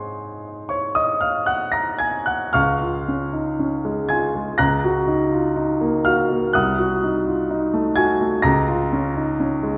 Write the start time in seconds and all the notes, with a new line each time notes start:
Already playing: G#2 G#3 C4 D#4 C5 C#5 G#5 C6 C#6
0.69 C#5 C#6
0.95 D#5 D#6
1.21 F5 F6
1.46 F#5 F#6
1.72 A#5 A#6
1.99 G#5 G#6
2.26 F#5 F#6
2.53 C#2 F5 C#6 F6
2.81 F4
3.08 C#4
3.33 D#4
3.59 C#4
3.85 G#3
4.09 F4 G#5 G#6
4.35 G#3
4.58 C#2 A#5 F#6 A#6
4.84 F#4
5.08 D#4
5.32 F4
5.56 D#4
5.81 A#3
6.05 F#4 F5 F6
6.32 A#3
6.53 C2 F#5 D#6 F#6
6.79 F#4
7.04 D#4
7.27 F4
7.51 D#4
7.74 A3
7.96 F#4 G#5 G#6
8.21 A3
8.42 C#2 A#5 A#6
8.68 F4
8.93 C#4
9.16 D#4
9.40 C#4
9.63 G#3